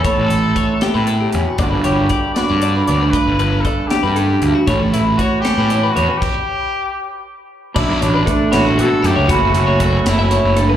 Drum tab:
CC |------|------|------|------|
HH |xxxxxx|xxxxxx|xxxxxx|xxxxxx|
SD |---o--|---o--|---o--|---o--|
BD |o-o---|o-o---|o-o---|o-o---|

CC |x-----|x-----|------|
HH |------|-xxxxx|xxxxxx|
SD |------|---o--|---o--|
BD |o-----|o-o---|o-o---|